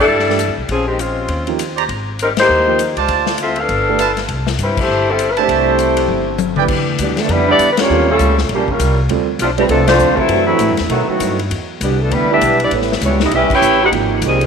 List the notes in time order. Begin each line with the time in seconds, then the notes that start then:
0.01 G3 D4 E4 A4
0.08 G2
0.19 snare
0.27 E3 A3 D4 G4, snare
0.39 hi-hat pedal, ride
0.48 E2
0.57 B1
0.69 A#1 F3 C4 C#4 G#4, kick, ride
0.88 D#3 G#3 C4 G4
0.99 G#3 C4 C#4 F4, hi-hat pedal, ride
1.28 D#2, kick, ride
1.47 F3 A#3 D#4 G4, ride
1.59 hi-hat pedal, ride
1.77 G4 C5 D5 A#5, ride
1.88 G#1, kick, ride
2.19 G3 C4 D#4 A#4, hi-hat pedal, ride
2.37 A#3 D#4 G4 C5, snare, ride
2.49 D#2
2.67 F3 A#3 D#4 G4
2.79 hi-hat pedal, ride
2.96 C#2 F4 C5 D5 A5, ride
3.08 D2, kick, ride
3.26 snare
3.38 hi-hat pedal, ride
3.42 C4 F4 A4 E5
3.56 D4 A4 F5, ride
3.60 B4
3.69 G1, kick, ride
3.89 A3 D4 G4 B4
3.99 F4 B4 E5 A5, hi-hat pedal, ride
4.17 snare, ride
4.28 C2, kick, ride
4.47 snare
4.58 G2, hi-hat pedal, ride
4.63 G3 C4 E4 B4
4.77 A3 E4 C5, kick, crash
4.81 G4
4.88 G1
5.10 G3 C4 E4 A4
5.19 hi-hat pedal, ride
5.32 B4
5.37 A3 D4 G4 C5 E5 A5, ride
5.41 G3 A3 C4 E4 G4 C5
5.48 C2, kick, ride
5.79 hi-hat pedal, ride
5.97 ride
6.08 G1, high tom
6.38 hi-hat pedal, high tom
6.56 E3 A3 D4 E4 G4 B4 D5 G5, mid tom
6.68 E2, kick, crash
6.98 D2 B2 D3 E3 G3 B3 D4 G4, kick, hi-hat pedal, ride
7.17 F3 A3 B3 D4 A4, snare, ride
7.29 F2 D3 G3 B3 D4 E4 B4, kick, ride
7.47 G3 B3 D4 E4 G4 D5
7.51 B3
7.59 E2, kick, hi-hat pedal, ride
7.72 B4
7.77 G3 A#3 C#4 F4 G4 C#5, snare, ride
7.90 D#2 G3 C4 F4 A4
8.09 A#2 C#3 G3 A3 C#4 F4 A4
8.19 C#2, kick, hi-hat pedal, ride
8.38 snare
8.49 A#1 A#2 C#3 G3, kick, ride
8.54 F3 A#3 C#4 G4
8.68 C#3 G3 A#3 C#4 F4 A#4, kick
8.79 C2, kick, hi-hat pedal, ride
9.09 D2 G3 C4 F4 A4, kick, ride
9.39 B1 A2 C3 F3 A3 C4 D4 F4, kick, hi-hat pedal, ride
9.58 E3 G3 A3 C4 F4 G4 B4, ride
9.69 C2 C3 F3 A3 C4 D4 A4, kick, ride
9.86 F3 A3 C4 D4 F4 C5, snare, ride
9.99 D2, hi-hat pedal
10.15 C3 E3 F#3 A3 C4 E4 A4, kick
10.29 F#2 E3 A3 D4 F#4, kick, ride
10.44 A2 C3 E3 F#3 A3 C4 E4
10.59 A2, kick, hi-hat pedal, ride
10.70 F#2
10.77 E2, snare, ride
10.87 F#2 A2 B2 D#3 F#3 A3 B3 D#4, kick, ride
11.07 A2 D#3 F#3 A3 B3 F#4, muted upright bass stroke
11.20 G2, kick, hi-hat pedal, ride
11.39 ride
11.50 E2, kick, ride
11.81 C2 B2 D3 E3 G3 B3 D4 G4, kick, hi-hat pedal, ride
12.00 F3 A3 B3 D4 A4
12.11 D2 D3 G3 B3 D4 E4 B4, kick, ride
12.30 G3 A3 B3 D4 E4 G4 B4 E5
12.41 B1, kick, hi-hat pedal, ride
12.60 G3 B3 D4, ride
12.64 B3 E4 G4 D5
12.71 A1 B3 E4 A4 C#5, kick, ride
12.82 snare
12.92 snare
13.01 C#2 E3 G3 C#4, kick, hi-hat pedal, ride
13.06 B3 E4 G4 C#5
13.20 D#4, snare
13.24 B3 E4 G4 D#5
13.31 B1 G3 C#4 E4, kick, ride
13.35 C#4 G4 B4 E5
13.49 C#4 E4 G4, muted upright bass stroke, kick, crash
13.55 E4 B4 C#5 G5
13.62 A1, hi-hat pedal
13.83 D#4 F#4 G4 B4 F#5
13.92 G#1 F3 A#3 D#4 G4, kick, ride
14.22 C2 C3 D#3 G#3, kick, hi-hat pedal, ride
14.26 D#3 G3 C4 G#4
14.41 A#3, ride